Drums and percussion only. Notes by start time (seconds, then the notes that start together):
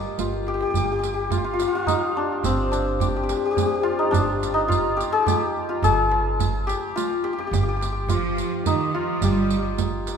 0.19 riq, tombak tek
0.33 tombak ka
0.47 tombak tek
0.61 tombak ka
0.74 riq, tombak dum
1.02 riq, tombak tek
1.30 riq, tombak dum
1.59 riq, tombak tek
1.87 riq, tombak dum
2.43 riq, tombak dum
2.72 riq, tombak tek
3.00 riq, tombak dum
3.29 riq, tombak tek
3.57 riq, tombak dum
4.13 riq, tombak dum
4.43 riq, tombak tek
4.70 riq, tombak dum
4.98 riq, tombak tek
5.27 riq, tombak dum
5.83 riq, tombak dum
6.12 tombak tek
6.40 riq, tombak dum
6.68 riq, tombak tek
6.96 riq, tombak tek
7.10 tombak ka
7.24 tombak tek
7.39 tombak ka
7.53 riq, tombak dum
7.81 riq, tombak tek
8.09 riq, tombak dum
8.37 riq, tombak tek
8.66 riq, tombak dum
9.22 riq, tombak dum
9.51 riq
9.78 riq, tombak dum
10.07 riq, tombak tek